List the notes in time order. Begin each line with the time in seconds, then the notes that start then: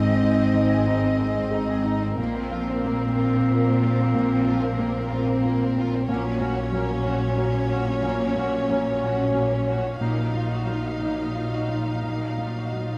Already playing: G#1 G#2 D#3 G#3 C4 D#4 G#4 D#5
0.05 C4
0.21 G#2 G#3
0.38 C4
0.54 D#3 D#4
0.71 G#4
0.87 C4 D#4
1.04 C4
1.19 G#3 D#4
1.38 C4
1.51 D#4 G#4
1.70 G#4
1.84 D#4
2.03 C4
2.17 A#1 A#2 A#3 C4 A#4 F5
2.35 C4
2.51 F3 F4
2.69 C4
2.84 A#3
3.01 C4
3.16 C4 F4
3.35 C4
3.49 A#3 F4
3.68 C4
3.82 C4 F4
4.00 C4
4.14 A#2 A#3
4.33 C4
4.46 F3 F4
4.63 C4
4.78 A#3
4.93 C4
5.10 C4 F4
5.27 C4
5.44 A#3 F4
5.62 C4
5.76 C4 F4
5.94 C4
6.08 A#1 A#2 F#3 A#3 C#4 C#5 F#5
6.25 C#4
6.40 A#3 C#4 F#4 F#5
6.58 C#4
6.72 F#3 A#3 C#4 F#5
6.91 C#4
7.05 C#4 F#4 F#5
7.20 C#4
7.36 A#3 C#4 F#4 F#5
7.54 C#4
7.70 C#4 F#4 F#5
7.87 C#4
8.02 A#2 A#3 C#4 F#5
8.21 C#4
8.36 A#3 C#4 F#4 F#5
8.55 C#4
8.70 F#3 A#3 C#4 F#5
8.88 C#4
9.01 C#4 F#4 F#5
9.22 C#4
9.34 C#4 F#4 F#5
9.38 A#3
9.53 C#4
9.68 C#4 F#4 F#5
9.86 C#4
9.99 A#1 A#2 F#3 D#4 F5
10.03 A#3
10.19 D#4
10.33 A#3 D#4 F4 F5
10.52 F#4
10.65 F#3 D#4 F5
10.69 F4
10.85 D#4
10.99 A#3 D#4 F5
11.19 D#4
11.33 D#4 F4 F5
11.53 F#4
11.68 D#4 F4 F5
11.88 D#4
12.03 A#2 A#3 D#4 F5
12.24 D#4
12.37 A#3 D#4 F5
12.42 F4
12.59 F#4
12.72 F#3 D#4 F5
12.76 F4
12.94 D#4